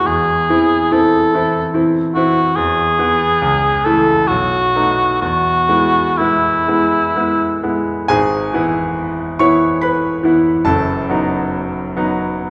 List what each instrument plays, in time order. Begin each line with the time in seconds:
Already playing: grand piano G#3 B3 E4
0.05 grand piano E2, cor anglais G#4
0.50 grand piano E3 C4 E4
0.92 grand piano E3 C4 E4, cor anglais A4
1.34 grand piano E3 C4 E4
1.74 grand piano E3 C4 E4
2.15 grand piano E3 C4 E4, cor anglais F#4
2.56 grand piano E2, cor anglais G#4
2.99 grand piano E3 B3 E4
3.42 grand piano C#2
3.85 grand piano E3 A3 E4, cor anglais A4
4.28 grand piano B1, cor anglais F#4
4.75 grand piano A3 B3 D#4
5.21 grand piano E2, cor anglais F#4
5.69 grand piano G#3 B3 E4
6.18 grand piano G#3 B3 E4, cor anglais E4
6.68 grand piano G#3 B3 E4
7.16 grand piano G#3 B3 E4
7.63 grand piano G#3 B3 E4
8.08 grand piano G#1 G#2 G#4 G#5
8.53 grand piano E3 B3 E4
9.39 grand piano E3 B3 E4 C#5 C#6
9.82 grand piano B4 B5
10.23 grand piano E3 B3 E4
10.65 grand piano F#1 F#2 A4 A5
11.09 grand piano F#3 B3 D#4
11.97 grand piano F#3 B3 D#4